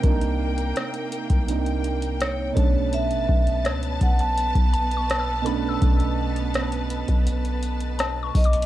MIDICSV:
0, 0, Header, 1, 7, 480
1, 0, Start_track
1, 0, Tempo, 722892
1, 23, Time_signature, 4, 2, 24, 8
1, 5750, End_track
2, 0, Start_track
2, 0, Title_t, "Synth pluck"
2, 0, Program_c, 0, 84
2, 2422, Note_on_c, 0, 73, 77
2, 3143, Note_on_c, 0, 81, 53
2, 3298, Note_on_c, 0, 85, 54
2, 3449, Note_on_c, 0, 88, 54
2, 3623, Note_on_c, 0, 83, 52
2, 3660, Note_off_c, 0, 73, 0
2, 3767, Note_off_c, 0, 88, 0
2, 3775, Note_on_c, 0, 88, 52
2, 4381, Note_off_c, 0, 81, 0
2, 4519, Note_off_c, 0, 85, 0
2, 4861, Note_off_c, 0, 83, 0
2, 4997, Note_off_c, 0, 88, 0
2, 5304, Note_on_c, 0, 81, 69
2, 5463, Note_on_c, 0, 85, 55
2, 5613, Note_on_c, 0, 86, 57
2, 5750, Note_off_c, 0, 81, 0
2, 5750, Note_off_c, 0, 85, 0
2, 5750, Note_off_c, 0, 86, 0
2, 5750, End_track
3, 0, Start_track
3, 0, Title_t, "Vibraphone"
3, 0, Program_c, 1, 11
3, 1472, Note_on_c, 1, 73, 86
3, 1951, Note_on_c, 1, 76, 113
3, 1962, Note_off_c, 1, 73, 0
3, 2401, Note_off_c, 1, 76, 0
3, 2675, Note_on_c, 1, 78, 93
3, 2781, Note_off_c, 1, 78, 0
3, 2793, Note_on_c, 1, 81, 106
3, 3601, Note_off_c, 1, 81, 0
3, 5555, Note_on_c, 1, 75, 87
3, 5750, Note_off_c, 1, 75, 0
3, 5750, End_track
4, 0, Start_track
4, 0, Title_t, "String section"
4, 0, Program_c, 2, 48
4, 0, Note_on_c, 2, 58, 74
4, 0, Note_on_c, 2, 70, 68
4, 0, Note_on_c, 2, 79, 81
4, 1676, Note_off_c, 2, 58, 0
4, 1677, Note_off_c, 2, 70, 0
4, 1677, Note_off_c, 2, 79, 0
4, 1701, Note_on_c, 2, 71, 67
4, 1702, Note_on_c, 2, 59, 76
4, 1702, Note_on_c, 2, 81, 86
4, 5750, Note_off_c, 2, 59, 0
4, 5750, Note_off_c, 2, 71, 0
4, 5750, Note_off_c, 2, 81, 0
4, 5750, End_track
5, 0, Start_track
5, 0, Title_t, "Felt piano"
5, 0, Program_c, 3, 0
5, 0, Control_c, 3, 64, 127
5, 0, Note_on_c, 3, 48, 77
5, 15, Note_on_c, 3, 58, 72
5, 31, Note_on_c, 3, 62, 68
5, 48, Note_on_c, 3, 63, 81
5, 952, Note_off_c, 3, 48, 0
5, 960, Note_off_c, 3, 58, 0
5, 968, Note_off_c, 3, 62, 0
5, 972, Note_on_c, 3, 48, 58
5, 976, Note_off_c, 3, 63, 0
5, 981, Note_on_c, 3, 58, 53
5, 989, Note_on_c, 3, 62, 54
5, 996, Note_on_c, 3, 63, 67
5, 1677, Note_on_c, 3, 47, 64
5, 1694, Note_on_c, 3, 57, 61
5, 1697, Note_off_c, 3, 48, 0
5, 1702, Note_off_c, 3, 58, 0
5, 1706, Note_off_c, 3, 62, 0
5, 1709, Note_off_c, 3, 63, 0
5, 1710, Control_c, 3, 64, 0
5, 1710, Note_on_c, 3, 61, 57
5, 1727, Note_on_c, 3, 62, 72
5, 1812, Control_c, 3, 64, 127
5, 3583, Note_off_c, 3, 47, 0
5, 3592, Note_off_c, 3, 57, 0
5, 3598, Note_on_c, 3, 47, 80
5, 3600, Note_off_c, 3, 61, 0
5, 3608, Note_off_c, 3, 62, 0
5, 3615, Note_on_c, 3, 57, 76
5, 3631, Note_on_c, 3, 61, 72
5, 3647, Note_on_c, 3, 62, 90
5, 5504, Note_off_c, 3, 47, 0
5, 5512, Note_off_c, 3, 57, 0
5, 5520, Note_off_c, 3, 61, 0
5, 5528, Note_off_c, 3, 62, 0
5, 5750, End_track
6, 0, Start_track
6, 0, Title_t, "808-style bass"
6, 0, Program_c, 4, 38
6, 25, Note_on_c, 4, 36, 118
6, 485, Note_off_c, 4, 36, 0
6, 864, Note_on_c, 4, 36, 103
6, 1677, Note_off_c, 4, 36, 0
6, 1705, Note_on_c, 4, 35, 103
6, 2067, Note_on_c, 4, 33, 95
6, 2077, Note_off_c, 4, 35, 0
6, 2179, Note_off_c, 4, 33, 0
6, 2184, Note_on_c, 4, 35, 110
6, 2427, Note_on_c, 4, 37, 95
6, 2437, Note_off_c, 4, 35, 0
6, 2653, Note_off_c, 4, 37, 0
6, 2664, Note_on_c, 4, 35, 102
6, 3009, Note_off_c, 4, 35, 0
6, 3023, Note_on_c, 4, 35, 101
6, 3837, Note_off_c, 4, 35, 0
6, 3865, Note_on_c, 4, 35, 110
6, 4677, Note_off_c, 4, 35, 0
6, 4705, Note_on_c, 4, 35, 105
6, 5517, Note_off_c, 4, 35, 0
6, 5544, Note_on_c, 4, 35, 105
6, 5750, Note_off_c, 4, 35, 0
6, 5750, End_track
7, 0, Start_track
7, 0, Title_t, "Drums"
7, 23, Note_on_c, 9, 42, 61
7, 24, Note_on_c, 9, 36, 112
7, 90, Note_off_c, 9, 36, 0
7, 90, Note_off_c, 9, 42, 0
7, 142, Note_on_c, 9, 42, 51
7, 209, Note_off_c, 9, 42, 0
7, 384, Note_on_c, 9, 42, 43
7, 450, Note_off_c, 9, 42, 0
7, 504, Note_on_c, 9, 42, 58
7, 511, Note_on_c, 9, 37, 98
7, 570, Note_off_c, 9, 42, 0
7, 578, Note_off_c, 9, 37, 0
7, 623, Note_on_c, 9, 42, 53
7, 689, Note_off_c, 9, 42, 0
7, 744, Note_on_c, 9, 42, 65
7, 810, Note_off_c, 9, 42, 0
7, 862, Note_on_c, 9, 42, 52
7, 863, Note_on_c, 9, 36, 90
7, 928, Note_off_c, 9, 42, 0
7, 929, Note_off_c, 9, 36, 0
7, 986, Note_on_c, 9, 42, 76
7, 1052, Note_off_c, 9, 42, 0
7, 1104, Note_on_c, 9, 42, 44
7, 1171, Note_off_c, 9, 42, 0
7, 1223, Note_on_c, 9, 42, 61
7, 1290, Note_off_c, 9, 42, 0
7, 1343, Note_on_c, 9, 42, 55
7, 1409, Note_off_c, 9, 42, 0
7, 1464, Note_on_c, 9, 42, 67
7, 1471, Note_on_c, 9, 37, 110
7, 1531, Note_off_c, 9, 42, 0
7, 1538, Note_off_c, 9, 37, 0
7, 1703, Note_on_c, 9, 36, 111
7, 1705, Note_on_c, 9, 42, 67
7, 1770, Note_off_c, 9, 36, 0
7, 1771, Note_off_c, 9, 42, 0
7, 1944, Note_on_c, 9, 42, 64
7, 2010, Note_off_c, 9, 42, 0
7, 2063, Note_on_c, 9, 42, 48
7, 2129, Note_off_c, 9, 42, 0
7, 2183, Note_on_c, 9, 36, 94
7, 2249, Note_off_c, 9, 36, 0
7, 2304, Note_on_c, 9, 42, 45
7, 2370, Note_off_c, 9, 42, 0
7, 2424, Note_on_c, 9, 42, 60
7, 2431, Note_on_c, 9, 37, 100
7, 2490, Note_off_c, 9, 42, 0
7, 2498, Note_off_c, 9, 37, 0
7, 2542, Note_on_c, 9, 42, 56
7, 2608, Note_off_c, 9, 42, 0
7, 2663, Note_on_c, 9, 36, 89
7, 2663, Note_on_c, 9, 42, 63
7, 2729, Note_off_c, 9, 42, 0
7, 2730, Note_off_c, 9, 36, 0
7, 2783, Note_on_c, 9, 42, 51
7, 2849, Note_off_c, 9, 42, 0
7, 2905, Note_on_c, 9, 42, 74
7, 2972, Note_off_c, 9, 42, 0
7, 3022, Note_on_c, 9, 36, 91
7, 3024, Note_on_c, 9, 42, 45
7, 3088, Note_off_c, 9, 36, 0
7, 3090, Note_off_c, 9, 42, 0
7, 3144, Note_on_c, 9, 42, 59
7, 3211, Note_off_c, 9, 42, 0
7, 3263, Note_on_c, 9, 42, 54
7, 3329, Note_off_c, 9, 42, 0
7, 3384, Note_on_c, 9, 42, 66
7, 3391, Note_on_c, 9, 37, 111
7, 3450, Note_off_c, 9, 42, 0
7, 3457, Note_off_c, 9, 37, 0
7, 3625, Note_on_c, 9, 42, 69
7, 3691, Note_off_c, 9, 42, 0
7, 3863, Note_on_c, 9, 36, 117
7, 3863, Note_on_c, 9, 42, 63
7, 3930, Note_off_c, 9, 36, 0
7, 3930, Note_off_c, 9, 42, 0
7, 3984, Note_on_c, 9, 42, 51
7, 4050, Note_off_c, 9, 42, 0
7, 4224, Note_on_c, 9, 42, 47
7, 4291, Note_off_c, 9, 42, 0
7, 4344, Note_on_c, 9, 42, 58
7, 4352, Note_on_c, 9, 37, 111
7, 4411, Note_off_c, 9, 42, 0
7, 4418, Note_off_c, 9, 37, 0
7, 4463, Note_on_c, 9, 42, 56
7, 4529, Note_off_c, 9, 42, 0
7, 4583, Note_on_c, 9, 42, 65
7, 4650, Note_off_c, 9, 42, 0
7, 4702, Note_on_c, 9, 42, 50
7, 4703, Note_on_c, 9, 36, 89
7, 4768, Note_off_c, 9, 42, 0
7, 4769, Note_off_c, 9, 36, 0
7, 4825, Note_on_c, 9, 42, 77
7, 4892, Note_off_c, 9, 42, 0
7, 4946, Note_on_c, 9, 42, 48
7, 5012, Note_off_c, 9, 42, 0
7, 5064, Note_on_c, 9, 42, 64
7, 5130, Note_off_c, 9, 42, 0
7, 5182, Note_on_c, 9, 42, 54
7, 5248, Note_off_c, 9, 42, 0
7, 5305, Note_on_c, 9, 42, 69
7, 5312, Note_on_c, 9, 37, 118
7, 5371, Note_off_c, 9, 42, 0
7, 5379, Note_off_c, 9, 37, 0
7, 5543, Note_on_c, 9, 36, 101
7, 5544, Note_on_c, 9, 42, 42
7, 5545, Note_on_c, 9, 46, 74
7, 5605, Note_off_c, 9, 42, 0
7, 5605, Note_on_c, 9, 42, 49
7, 5609, Note_off_c, 9, 36, 0
7, 5611, Note_off_c, 9, 46, 0
7, 5665, Note_off_c, 9, 42, 0
7, 5665, Note_on_c, 9, 42, 58
7, 5726, Note_off_c, 9, 42, 0
7, 5726, Note_on_c, 9, 42, 70
7, 5750, Note_off_c, 9, 42, 0
7, 5750, End_track
0, 0, End_of_file